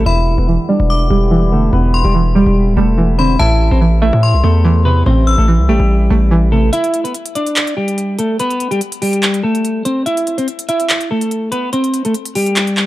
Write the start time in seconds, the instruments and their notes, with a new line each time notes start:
0.06 808-style bass E1, synth pluck E2, harmonium D3 G3 B3 E4, clean electric guitar E4 E5, synth bell B5
0.37 808-style bass E1, clean electric guitar B3 B4
0.48 synth pluck E3
0.69 synth pluck G3, clean electric guitar D4 D5
0.80 808-style bass E1
0.90 synth bell D6
1.10 808-style bass E1, synth pluck G3, clean electric guitar G3 G4
1.31 synth pluck E3
1.52 synth pluck D3, clean electric guitar A3 A4
1.73 808-style bass E1, synth pluck E2, clean electric guitar B3 B4
1.94 synth bell C6
2.04 808-style bass E1, clean electric guitar G3 G4
2.15 synth pluck E3
2.35 synth pluck G3, clean electric guitar G3 G4
2.46 808-style bass E1
2.67 808-style bass D1
2.77 808-style bass E1, synth pluck G3, clean electric guitar A3 A4
2.98 synth pluck E3
3.18 synth pluck D3, clean electric guitar C4 C5, synth bell B5
3.39 808-style bass A1, synth pluck A2, harmonium C3 E3 A3, clean electric guitar E4 E5, synth bell A5
3.71 808-style bass A1, clean electric guitar C4 C5
3.81 synth pluck E3
4.02 synth pluck A3, clean electric guitar E4 E5
4.13 808-style bass A2
4.23 synth bell C6
4.34 808-style bass C2
4.44 808-style bass E2, synth pluck A3, clean electric guitar A3 A4
4.65 synth pluck E3
4.85 synth pluck C3, clean electric guitar B3 B4
5.06 808-style bass A1, synth pluck A2, clean electric guitar C4 C5
5.27 synth bell E6
5.38 808-style bass A1, clean electric guitar A3 A4
5.48 synth pluck E3
5.59 808-style bass C2
5.69 808-style bass A1, clean electric guitar G3 G4, synth pluck A3
5.80 808-style bass A1
6.10 808-style bass A1, synth pluck A3
6.31 synth pluck E3
6.52 synth pluck C3, clean electric guitar A3 A4
6.73 clean electric guitar E4 E5, closed hi-hat
6.84 closed hi-hat
6.94 closed hi-hat
7.04 clean electric guitar B3 B4, closed hi-hat
7.14 closed hi-hat
7.26 closed hi-hat
7.35 clean electric guitar D4 D5, closed hi-hat
7.47 closed hi-hat
7.56 clap, closed hi-hat
7.67 closed hi-hat
7.77 clean electric guitar G3 G4
7.88 closed hi-hat
7.98 closed hi-hat
8.19 clean electric guitar A3 A4, closed hi-hat
8.39 clean electric guitar B3 B4, closed hi-hat
8.51 closed hi-hat
8.60 closed hi-hat
8.71 clean electric guitar G3 G4, closed hi-hat
8.81 closed hi-hat
8.92 closed hi-hat
9.02 clean electric guitar G3 G4, open hi-hat
9.13 closed hi-hat
9.23 clap, closed hi-hat
9.34 closed hi-hat
9.43 clean electric guitar A3 A4
9.55 closed hi-hat
9.65 closed hi-hat
9.85 clean electric guitar C4 C5, closed hi-hat
10.06 clean electric guitar E4 E5, closed hi-hat
10.17 closed hi-hat
10.27 closed hi-hat
10.38 clean electric guitar C4 C5, closed hi-hat
10.48 closed hi-hat
10.59 closed hi-hat
10.69 clean electric guitar E4 E5, closed hi-hat
10.80 closed hi-hat
10.90 clap, closed hi-hat
11.01 closed hi-hat
11.11 clean electric guitar A3 A4
11.21 closed hi-hat
11.31 closed hi-hat
11.52 clean electric guitar B3 B4, closed hi-hat
11.73 clean electric guitar C4 C5, closed hi-hat
11.84 closed hi-hat
11.94 closed hi-hat
12.05 clean electric guitar A3 A4, closed hi-hat
12.14 closed hi-hat
12.25 closed hi-hat
12.35 clean electric guitar G3 G4, open hi-hat
12.46 closed hi-hat
12.56 clap, closed hi-hat
12.67 closed hi-hat
12.77 clap